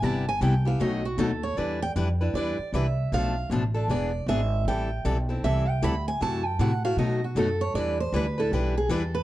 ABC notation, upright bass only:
X:1
M:4/4
L:1/8
Q:"Swing" 1/4=156
K:Ephr
V:1 name="Upright bass" clef=bass
G,,,2 C,,2 B,,,2 ^D,,2 | E,,2 F,,2 E,, z C,,2 | B,,,2 A,,,2 E,,,2 ^G,,,2 | A,,,2 B,,,2 C,,2 D,,2 |
^F,,2 A,,2 B,,2 F,,2 | E,,2 D,,2 B,,,2 E,,2 |]